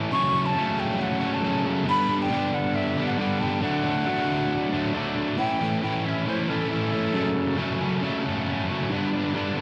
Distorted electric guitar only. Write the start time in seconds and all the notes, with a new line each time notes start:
Already playing: A2 E3 A3 C#4 E4
0.12 F#2 C#3 F#3 A3 C#4
0.34 F#3 A3 C#4
0.55 C#3 F#3 A3 C#4
1.20 F#3 A3 C#4
1.42 F#2 C#3 F#3 A3 C#4
1.64 F#3 A3 C#4
1.86 G2 D3 G3 B3 D4
2.09 G3 B3 D4
2.30 D3 G3 B3 D4
2.96 G3 B3 D4
3.17 G2 D3 G3 B3 D4
3.40 G3 B3 D4
3.62 D3 F#3 A3 D4
3.83 F#3 A3 D4
4.06 D3 F#3 A3 D4
4.72 F#3 A3 D4
4.94 D3 F#3 A3 D4
5.15 F#3 A3 D4
5.37 A2 E3 A3 C#4 E4
5.60 A3 C#4 E4
5.82 A2 E3 A3 C#4 E4
6.05 A3 C#4 E4
6.26 E3 A3 C#4 E4
6.48 A2 E3 A3 C#4 E4
6.70 E3 A3 C#4 E4
6.92 A3 C#4 E4
7.14 F#2 C#3 F#3 A3 C#4
7.36 F#3 A3 C#4
7.57 F#2 C#3 F#3 A3 C#4
7.80 F#3 A3 C#4
8.02 C#3 F#3 A3 C#4
8.24 F#2 C#3 F#3 A3 C#4
8.47 C#3 F#3 A3 C#4
8.68 F#3 A3 C#4
8.90 G2 D3 G3 B3 D4
9.13 G3 B3 D4
9.34 G2 D3 G3 B3 D4
9.57 D4